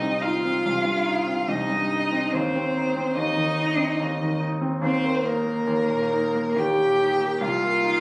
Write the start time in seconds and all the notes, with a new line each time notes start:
Already playing: C2 D#4 D#5
0.02 C4
0.21 D#4 F4 F5
0.45 C4
0.65 C2
0.85 G2
1.06 D#4
1.27 C4
1.47 C2 D#4 D#5
1.69 G2
1.91 D#4
2.12 C4
2.32 D#2 C4 C5
2.55 C4
2.77 D#4
2.96 C4
3.15 D#2 D#4 D#5
3.37 D#3
3.59 D#4
3.78 C4
3.99 D#2
4.21 D#3
4.40 D#4
4.61 C4
4.81 D#2 C4
4.86 C5
5.04 A#3
5.24 A#3 D#4 A#4
5.45 A#3
5.67 D#2
5.89 A#2
6.11 D#4
6.35 A#3
6.56 D#2 G4 G5
6.78 A#2
7.00 D#4
7.20 A#3
7.41 C2 F4 F5
7.64 A#3
7.84 D#4